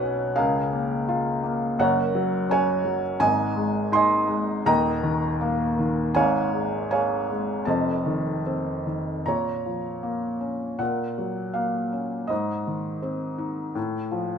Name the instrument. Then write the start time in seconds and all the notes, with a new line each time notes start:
felt piano
Already playing: B1 B2 C#4 F#4 B4 C#5 F#5 G#5
0.02 C#4
0.36 C#2 C#3 G#4 A#4 F5
0.73 A#3
1.09 F4
1.44 A#3
1.79 F#1 F#2 A#4 C#5 F#5
2.15 F#3
2.49 C#4 C#5 G#5
2.85 F#3
3.20 G#1 G#2 D#5 G#5
3.56 G#3
3.92 D#4 D#5 G#5 C6
4.28 G#3
4.66 D#1 D#2 D#5 G5 A#5
5.03 D#3
5.41 A#3
5.79 D#3
6.15 G#1 G#2 C#5 F5 G#5
6.53 G#3
6.91 G#4 C#5 F5 G#5
7.30 G#3
7.65 F1 F2 C5 D#5 A5
8.06 D#3
8.46 C4
8.86 D#3
9.26 A#2 C#5 A#5
9.66 F3
10.03 A#3
10.41 C#4
10.79 A#2 A#4 F#5
11.18 F#3
11.54 A#3 F5
11.93 C#4
12.27 G#2 C5 D#5
12.67 D#3
13.02 C4
13.38 D#4
13.75 A2
14.11 F3